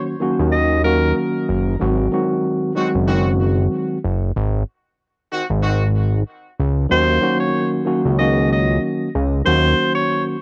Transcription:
Already playing: tine electric piano D#3 F#3 A#3 C#4 F#4
0.20 tine electric piano D#3 F#3 A#3 C#4 F#4
0.39 analog synth bass D#2
0.52 tenor saxophone D#5
0.83 tine electric piano D#3 F#3 A#3 C#4 F#4, tenor saxophone A#4
1.49 analog synth bass F#1
1.79 analog synth bass G#1, tine electric piano D#3 F#3 G#3 C4 F#4
2.11 tine electric piano D#3 F#3 G#3 C4 F#4
2.75 tine electric piano D#3 F#3 G#3 C4 F#4, horn section D#3 C4 F#4
2.95 analog synth bass F#1
3.06 tine electric piano D#3 F#3 G#3 C4 F#4, horn section D#3 C4 F#4
4.04 analog synth bass F#1
4.36 analog synth bass G#1
5.32 horn section D#3 C4 F#4
5.50 analog synth bass G#1
5.63 horn section D#3 C4 F#4
6.60 analog synth bass C#2
6.89 analog synth bass D#2, tine electric piano D#3 F#3 A#3 C#4 F#4, tenor saxophone C5
7.21 tine electric piano D#3 F#3 A#3 C#4 F#4
7.40 tenor saxophone C#5
7.85 tine electric piano D#3 F#3 A#3 C#4 F#4
8.05 analog synth bass C#2
8.18 tine electric piano D#3 F#3 A#3 C#4 F#4, tenor saxophone D#5
8.52 tenor saxophone D#5
9.15 analog synth bass C#2
9.45 analog synth bass D#2, tine electric piano D#3 F#3 A#3 C#4 F#4, tenor saxophone C5
9.95 tenor saxophone C#5

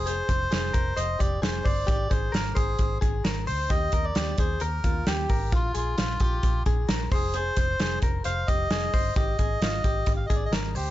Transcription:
Already playing: fingered electric bass F1
0.06 clean electric guitar G#4, melodica C5, closed hi-hat
0.29 fingered electric bass F1, clean electric guitar C5, kick, closed hi-hat
0.51 fingered electric bass F1, clean electric guitar G#4, snare, closed hi-hat
0.74 fingered electric bass F1, clean electric guitar A#4, kick, closed hi-hat
0.97 fingered electric bass F1, clean electric guitar C5, melodica D#5, closed hi-hat
1.19 fingered electric bass F1, clean electric guitar G4, melodica D5, kick, closed hi-hat
1.42 fingered electric bass F1, clean electric guitar G#4, melodica C5, snare, closed hi-hat
1.64 fingered electric bass G1, clean electric guitar C5, melodica D5, kick, open hi-hat
1.87 fingered electric bass G#1, clean electric guitar G4, kick, closed hi-hat
2.10 fingered electric bass G#1, clean electric guitar G#4, melodica C5, kick, closed hi-hat
2.32 fingered electric bass G#1, clean electric guitar A#4, melodica A#4, snare, closed hi-hat
2.55 fingered electric bass G#1, melodica G#4, clean electric guitar C5, kick, closed hi-hat
2.79 fingered electric bass G#1, kick, closed hi-hat
3.01 fingered electric bass G#1, clean electric guitar G#4, kick, closed hi-hat
3.24 fingered electric bass G#1, clean electric guitar A#4, snare, closed hi-hat
3.47 fingered electric bass D2, clean electric guitar C5, melodica C5, open hi-hat
3.70 fingered electric bass D#2, clean electric guitar G4, melodica D#5, kick, closed hi-hat
3.92 fingered electric bass D#2, clean electric guitar A#4, kick, closed hi-hat
4.04 melodica D5
4.15 fingered electric bass D#2, clean electric guitar G4, snare, closed hi-hat
4.38 fingered electric bass D#2, clean electric guitar G#4, melodica C5, kick, closed hi-hat
4.60 fingered electric bass D#2, clean electric guitar A#4, melodica A#4, closed hi-hat
4.84 fingered electric bass D#2, clean electric guitar F4, kick, closed hi-hat
5.07 fingered electric bass D#2, clean electric guitar G4, melodica G4, snare, closed hi-hat
5.29 fingered electric bass G#1, clean electric guitar A#4, kick, open hi-hat
5.52 fingered electric bass A#1, clean electric guitar F4, melodica F4, kick, closed hi-hat
5.74 fingered electric bass A#1, melodica F4, clean electric guitar G#4, closed hi-hat
5.98 fingered electric bass A#1, clean electric guitar F4, snare, closed hi-hat
6.20 fingered electric bass A#1, clean electric guitar G4, kick, closed hi-hat
6.43 fingered electric bass A#1, kick, closed hi-hat
6.66 fingered electric bass A#1, clean electric guitar G#4, kick, closed hi-hat
6.89 fingered electric bass A#1, clean electric guitar A#4, snare, closed hi-hat
7.12 fingered electric bass F1, melodica G#4, clean electric guitar C5, kick, open hi-hat
7.34 clean electric guitar G#4, melodica C5, closed hi-hat
7.57 fingered electric bass F1, clean electric guitar C5, kick, closed hi-hat
7.80 fingered electric bass F1, clean electric guitar G#4, snare, closed hi-hat
8.02 fingered electric bass F1, clean electric guitar A#4, kick, closed hi-hat
8.24 fingered electric bass F1, clean electric guitar C5, melodica F5, closed hi-hat
8.47 fingered electric bass F1, clean electric guitar G4, melodica D#5, kick, closed hi-hat
8.71 fingered electric bass F1, clean electric guitar G#4, snare, closed hi-hat
8.93 fingered electric bass G1, clean electric guitar C5, kick, open hi-hat
9.16 fingered electric bass G#1, clean electric guitar G4, melodica D#5, kick, closed hi-hat
9.39 fingered electric bass G#1, clean electric guitar G#4, kick, closed hi-hat
9.61 fingered electric bass G#1, clean electric guitar F4, snare, closed hi-hat
9.84 fingered electric bass G#1, clean electric guitar G4, kick, closed hi-hat
10.06 fingered electric bass G#1, kick, closed hi-hat
10.17 melodica F5
10.26 clean electric guitar G#4, melodica D#5
10.30 fingered electric bass G#1, kick, closed hi-hat
10.35 melodica D5
10.45 melodica D#5
10.51 fingered electric bass G#1, clean electric guitar A#4, snare, closed hi-hat
10.74 fingered electric bass D2, melodica G4, clean electric guitar C5, open hi-hat

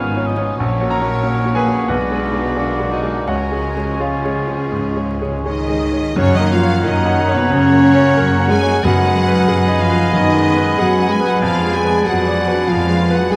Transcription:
Already playing: double bass section G#1, cello section G#2, grand piano C#3 B3 F4 B4 C#5 G#5 A#5, viola section D#3 B3, french horn section F3 C#4, bassoon C#4, violin section D#4 B4, clarinet G#4, cor anglais F5, flute G#5
0.16 grand piano B3 F4 C#5
0.26 viola section F3, cor anglais D#5
0.37 grand piano B3 F4 C#5
0.57 double bass section A#1, grand piano A#1, cello section A#2, french horn section F#3, viola section F#3 A#3, cor anglais C#5, flute F#5
0.80 grand piano A#3 F#4 C#5
0.90 viola section C#4, clarinet A#4, violin section C#5, grand piano C#5 A#5
1.01 grand piano A#3 F#4 C#5
1.23 viola section F#3 C#4, grand piano A#3 F#4 C#5, bassoon C#4, flute F#5
1.45 grand piano A#3 F#4 C#5
1.55 viola section A#3, bassoon A#3, clarinet G#4, grand piano B4 G#5, violin section B4
1.67 grand piano A#3 F#4 C#5
1.88 double bass section B1, grand piano B1 B4 F#5, cello section B2, french horn section G#3 D4, viola section G#3 B3, bassoon B3, violin section D4 B4, clarinet F#4, cor anglais D5, flute G#5
2.11 grand piano G#3 G#4 D5
2.22 viola section D#4, flute F#5
2.32 grand piano G#3 G#4 D5
2.56 viola section F#3 D4, grand piano G#3 G#4 D5, bassoon A#3, violin section D4, cor anglais D5
2.80 grand piano G#3 G#4 D5
2.91 clarinet D#4, violin section D#4 F#4, grand piano F#4 D#5
3.02 grand piano G#3 G#4 D5
3.26 double bass section C#2, grand piano C#2 C#5 F#5, cello section C#3, viola section F3 C#4, bassoon G#3, french horn section C#4, violin section C#4 A#4, clarinet F#4, cor anglais C#5, flute G#5
3.51 grand piano G#3 G#4 C#5
3.76 grand piano G#3 G#4 C#5
4.00 grand piano G#3 G#4 C#5 F5, clarinet F4, violin section G#4
4.24 grand piano G#3 G#4 C#5
4.47 grand piano G#3 G#4 C#5
4.71 grand piano G#2
4.96 grand piano G#3 G#4 C#5
5.22 grand piano G#3 G#4 C#5
5.44 cello section D#3, grand piano G#3 G#4 C#5, french horn section D#4, violin section D#5
5.69 grand piano G#3 G#4 C#5
5.92 grand piano G#3 G#4 C#5
6.16 grand piano F#2, double bass section F#2, cello section C#3, viola section F#3 C#4, french horn section C#4, bassoon C#4, violin section C#5, clarinet C#5, cor anglais F#5, flute A#5
6.34 cello section D#3, viola section A#3 F#4, french horn section D#4, violin section D#5
6.40 grand piano A#3
6.51 cello section F3, viola section F#3 C#4, french horn section F4, violin section F5
6.62 grand piano C#5
6.69 viola section A#3 F#4
6.84 double bass section F#2, cello section D#3, viola section F#3 C#4, french horn section D#4, grand piano A#4, violin section D#5
7.01 viola section A#3 F#4
7.06 grand piano F#5
7.18 viola section F#3 C#4
7.28 grand piano C#5
7.34 cello section B2, viola section A#3 F#4, french horn section B3, violin section B4
7.50 double bass section F#2, grand piano C#3, cello section C#3, viola section F#3 C#4, french horn section C#4, violin section C#5
7.67 viola section A#3 F#4
7.72 grand piano A#3
7.83 viola section F#3 C#4
7.95 grand piano C#5
8.00 viola section A#3 F#4
8.17 double bass section F#2, viola section F#3 C#4, grand piano A#4
8.34 viola section A#3 F#4
8.40 grand piano F#5
8.49 viola section F#3 C#4, cello section G#3, french horn section G#4, violin section G#5
8.63 viola section A#3 F#4, grand piano C#5
8.82 double bass section F#2, timpani F#2, grand piano F#2, viola section F#3 B3, cello section F#3, bassoon B3, french horn section F#4, clarinet D#5, violin section F#5, cor anglais G#5, flute B5
8.99 viola section G#3 D#4
9.06 grand piano G#3
9.15 viola section F#3 B3
9.28 viola section G#3 D#4, grand piano B4
9.48 double bass section F#2, viola section F#3 B3, grand piano G#4
9.64 viola section G#3 D#4, grand piano D#5
9.80 cello section F3, viola section F#3 B3, french horn section F4, violin section F5
9.90 grand piano B4
9.96 viola section G#3 D#4
10.12 grand piano F#2, double bass section F#2, cello section D#3, viola section F#3 B3, french horn section D#4, violin section D#5
10.30 viola section G#3 D#4
10.36 grand piano G#3
10.47 viola section F#3 B3
10.57 grand piano B4
10.62 viola section G#3 D#4
10.78 double bass section F#2, viola section F#3 B3, cello section F#3, french horn section F#4, grand piano G#4, violin section F#5
10.96 viola section G#3 D#4, grand piano D#5
11.10 viola section F#3 B3, cello section G#3, french horn section G#4, violin section G#5
11.21 grand piano B4
11.26 cello section F#3, viola section G#3 D#4, french horn section F#4, violin section F#5
11.41 grand piano F2, double bass section F2, cello section F3, viola section F3 B3, french horn section F4, clarinet D5, violin section F5
11.59 viola section G#3 D4
11.65 grand piano G#3
11.74 viola section F3 B3, cello section G#3, french horn section G#4, violin section G#5
11.84 grand piano B4
11.90 viola section G#3 D4
12.05 double bass section F2, viola section F3 B3, cello section F#3, french horn section F#4, grand piano G#4, violin section F#5
12.23 viola section G#3 D4, grand piano D5
12.39 viola section F3 B3
12.48 grand piano B4
12.53 viola section G#3 D4
12.67 double bass section F2, grand piano F3, cello section F3, viola section F3 B3, french horn section F4, violin section F5
12.85 viola section G#3 D4, grand piano G#3
13.01 viola section F3 B3
13.11 grand piano B4, violin section F#5
13.15 cello section F#3, viola section G#3 D4, french horn section F#4, violin section F#5
13.30 double bass section F2, viola section F3, cello section G#3, french horn section G#4, grand piano G#4, violin section G#5

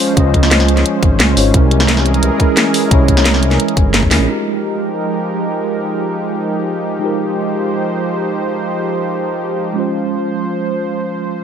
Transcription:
Already playing: analog synth pad F3 C#4 C5, tine electric piano G#3 C#4 F4 C5
0.14 detuned saw bass C#2, tine electric piano G#3 C#4, kick, closed hi-hat
0.18 tine electric piano F4 D#5
0.34 kick, closed hi-hat
0.43 snare, closed hi-hat
0.51 snare, closed hi-hat
0.60 snare
0.68 closed hi-hat
0.77 snare, closed hi-hat
0.86 closed hi-hat
1.03 detuned saw bass G#1, kick, closed hi-hat
1.20 detuned saw bass C#2, snare, closed hi-hat
1.35 detuned saw bass G#1, tine electric piano G#3 C#4 F4 C#5, open hi-hat
1.51 detuned saw bass C2, analog synth pad E3 G#4 A#4, tine electric piano G#3 C#4, kick, closed hi-hat
1.55 tine electric piano E4 A#4
1.71 closed hi-hat
1.80 snare, closed hi-hat
1.89 snare, closed hi-hat
1.97 snare
2.06 closed hi-hat
2.14 closed hi-hat
2.23 detuned saw bass C2, closed hi-hat
2.38 tine electric piano G#3 C#4 E4 A#4, kick, closed hi-hat
2.57 snare, closed hi-hat
2.74 open hi-hat
2.88 detuned saw bass C2, tine electric piano G#3 C#4, kick, closed hi-hat
2.92 tine electric piano E4 C#5
3.08 kick, closed hi-hat
3.17 snare, closed hi-hat
3.26 snare, closed hi-hat
3.34 snare
3.43 closed hi-hat
3.51 snare, closed hi-hat
3.60 closed hi-hat
3.68 closed hi-hat
3.77 detuned saw bass G1, kick, closed hi-hat
3.94 detuned saw bass G1, snare, closed hi-hat
4.03 kick
4.10 detuned saw bass E2, tine electric piano G#3 C#4 E4 A#4, snare, open hi-hat
4.20 detuned saw bass A#1
4.25 analog synth pad F3 G#3 D#4 G4 A#4, tine electric piano G#3 D#4 F4
4.30 tine electric piano G4 A#4
6.99 tine electric piano G#3 D#4 F4, analog synth pad C5
7.04 tine electric piano G4 A#4
9.74 tine electric piano G#3 C#4, analog synth pad C5
9.78 tine electric piano F4 C5

